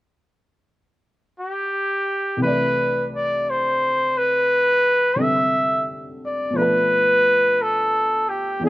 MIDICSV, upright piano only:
0, 0, Header, 1, 2, 480
1, 0, Start_track
1, 0, Key_signature, 0, "major"
1, 0, Tempo, 1034483
1, 1116, Time_signature, 4, 2, 24, 8
1, 4033, End_track
2, 0, Start_track
2, 0, Title_t, "Upright piano"
2, 0, Program_c, 0, 0
2, 1099, Note_on_c, 0, 36, 40
2, 1105, Note_on_c, 0, 48, 39
2, 1117, Note_on_c, 0, 52, 38
2, 1127, Note_on_c, 0, 57, 41
2, 1136, Note_on_c, 0, 62, 39
2, 1146, Note_on_c, 0, 74, 50
2, 1211, Control_c, 0, 64, 127
2, 2386, Note_off_c, 0, 48, 0
2, 2393, Note_on_c, 0, 48, 35
2, 2394, Note_on_c, 0, 50, 34
2, 2398, Note_on_c, 0, 55, 34
2, 2405, Note_on_c, 0, 60, 34
2, 2405, Note_on_c, 0, 69, 39
2, 3017, Note_on_c, 0, 47, 43
2, 3031, Note_on_c, 0, 53, 45
2, 3033, Note_off_c, 0, 36, 0
2, 3034, Note_off_c, 0, 57, 0
2, 3038, Note_off_c, 0, 48, 0
2, 3039, Note_off_c, 0, 50, 0
2, 3041, Note_off_c, 0, 55, 0
2, 3041, Note_on_c, 0, 57, 42
2, 3042, Note_off_c, 0, 52, 0
2, 3044, Note_off_c, 0, 60, 0
2, 3045, Note_off_c, 0, 69, 0
2, 3046, Note_off_c, 0, 62, 0
2, 3048, Control_c, 0, 64, 0
2, 3053, Note_on_c, 0, 62, 45
2, 3057, Note_off_c, 0, 74, 0
2, 3070, Note_on_c, 0, 71, 53
2, 3127, Control_c, 0, 64, 127
2, 3983, Note_off_c, 0, 47, 0
2, 3987, Note_on_c, 0, 40, 44
2, 3990, Note_off_c, 0, 53, 0
2, 3993, Note_on_c, 0, 52, 43
2, 3995, Note_off_c, 0, 57, 0
2, 3998, Note_off_c, 0, 62, 0
2, 3999, Note_on_c, 0, 60, 36
2, 4000, Control_c, 0, 64, 0
2, 4005, Note_on_c, 0, 62, 39
2, 4009, Note_off_c, 0, 71, 0
2, 4010, Note_on_c, 0, 68, 52
2, 4033, Note_off_c, 0, 40, 0
2, 4033, Note_off_c, 0, 52, 0
2, 4033, Note_off_c, 0, 60, 0
2, 4033, Note_off_c, 0, 62, 0
2, 4033, Note_off_c, 0, 68, 0
2, 4033, End_track
0, 0, End_of_file